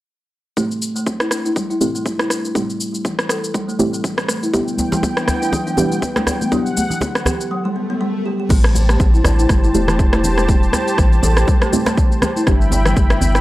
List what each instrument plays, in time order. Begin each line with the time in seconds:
0.57 synth stab A3 C4 E4 G4, kalimba A3, kick, shaker
0.71 shaker
0.82 shaker
0.96 kalimba A3, shaker
1.06 kalimba C4, kick, shaker
1.20 kalimba E4, cross-stick, shaker
1.31 kalimba D4, cross-stick, shaker
1.45 kalimba E4, shaker
1.56 kalimba G3, kick, shaker
1.70 kalimba E4, shaker
1.81 kalimba A3, synth stab A3 C4 E4 G4, shaker
1.95 kalimba A3, shaker
2.06 kick, shaker
2.19 kalimba E4, cross-stick, shaker
2.30 kalimba D4, cross-stick, shaker
2.45 shaker
2.55 kalimba G3, synth stab A3 C4 E4 G4, kick, shaker
2.70 shaker
2.80 shaker
2.94 shaker
3.05 kalimba E3, kick, shaker
3.19 cross-stick, shaker
3.29 kalimba A4, cross-stick, shaker
3.44 shaker
3.54 kalimba G3, kick, shaker
3.68 kalimba A3, shaker
3.79 kalimba G3, synth stab A3 C4 E4 G4, shaker
3.93 kalimba A3, shaker
4.04 kalimba E3, kick, shaker
4.18 cross-stick, shaker
4.29 kalimba A3, cross-stick, shaker
4.43 kalimba E4, shaker
4.53 analog synth pad E3 B3 G5, kalimba G3, synth stab B3 D4 E4 G4, kick, djembe tone, shaker
4.68 shaker
4.78 muted conga, high conga, djembe tone, shaker
4.92 kalimba G3, djembe slap, low conga, shaker
5.03 kalimba B3, kick, high conga, djembe tone, shaker
5.17 kalimba D4, cross-stick, muted conga, shaker
5.28 kalimba B3, cross-stick, djembe tone, low conga, djembe bass, shaker
5.42 kalimba D4, shaker
5.52 kalimba F#3, kick, muted conga, djembe tone, low conga, shaker
5.67 kalimba D4, shaker
5.77 kalimba G3, synth stab B3 D4 E4 G4, djembe tone, low conga, shaker
5.92 kalimba G3, muted conga, shaker
6.02 kick, djembe tone, shaker
6.16 kalimba D4, cross-stick, djembe slap, high conga, shaker
6.27 kalimba B3, cross-stick, djembe tone, shaker
6.41 muted conga, high conga, shaker
6.52 kalimba F#3, synth stab B3 D4 E4 G4, analog synth pad F#5, kick, djembe tone, shaker
6.66 shaker
6.77 muted conga, high conga, djembe tone, shaker
6.90 low conga, shaker
7.01 kalimba D3, kick, djembe tone, high conga, shaker
7.15 cross-stick, muted conga, shaker
7.26 kalimba G4, cross-stick, djembe tone, djembe bass, low conga, shaker
7.41 shaker
7.51 kalimba F#3, swell
7.65 kalimba G3
7.76 kalimba B3
7.90 kalimba B3
8.01 kalimba G3
8.26 kalimba G4
8.40 kalimba G4
8.49 sub bass A1, synth stab A3 C4 E4 G4, kalimba A3, analog synth pad G4 C5 A5, kick, crash, djembe tone, shaker
8.64 cross-stick, shaker
8.75 muted conga, high conga, djembe tone, shaker
8.89 kalimba A3, cross-stick, shaker
8.99 sub bass A1, kalimba C4, kick, high conga, djembe tone, shaker
9.13 kalimba E4, muted conga, shaker
9.24 sub bass A1, kalimba D4, cross-stick, djembe tone, low conga, djembe bass, shaker
9.39 kalimba E4, shaker
9.49 sub bass G1, kalimba G3, kick, cross-stick, muted conga, djembe tone, shaker
9.64 kalimba E4, shaker
9.74 sub bass E1, synth stab A3 C4 E4 G4, kalimba A3, djembe tone, shaker
9.88 kalimba A3, cross-stick, muted conga, low conga, shaker
9.99 kick, djembe tone, shaker
10.13 kalimba E4, cross-stick, djembe slap, high conga, shaker
10.24 kalimba D4, djembe tone, low conga, shaker
10.38 cross-stick, muted conga, high conga, shaker
10.48 kalimba G3, synth stab A3 C4 E4 G4, kick, djembe tone, shaker
10.63 shaker
10.73 cross-stick, muted conga, djembe tone, high conga, shaker
10.88 shaker
10.98 sub bass A1, kalimba E3, kick, cross-stick, high conga, djembe tone, shaker
11.12 muted conga, shaker
11.22 sub bass A1, kalimba A4, djembe tone, low conga, djembe bass, shaker
11.37 cross-stick, shaker
11.47 kalimba G3, kick, muted conga, djembe tone, high conga, shaker
11.62 kalimba A3, cross-stick, shaker
11.72 kalimba G3, synth stab A3 C4 E4 G4, djembe tone, high conga, shaker
11.86 kalimba A3, cross-stick, muted conga, djembe slap, shaker
11.97 kalimba E3, kick, djembe tone, shaker
12.12 shaker
12.22 kalimba A3, cross-stick, high conga, djembe tone, low conga, shaker
12.36 kalimba E4, muted conga, shaker
12.47 sub bass G1, kalimba G3, synth stab B3 D4 E4 G4, analog synth pad E5 G5 B5, kick, cross-stick, djembe tone, shaker
12.61 shaker
12.71 muted conga, high conga, djembe tone, shaker
12.85 kalimba G3, cross-stick, low conga, shaker
12.97 sub bass G1, kalimba B3, kick, djembe tone, high conga, shaker
13.10 kalimba D4, cross-stick, muted conga, shaker
13.21 sub bass G1, kalimba B3, djembe tone, low conga, djembe bass, shaker
13.35 kalimba D4, cross-stick, shaker